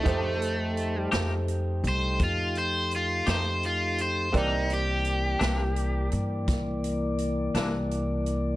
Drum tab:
HH |xxxxxxxxxxxx|xxxxxxxxxxxx|
SD |---o-----o--|---o--o--o--|
BD |o-----o-----|o-----o-----|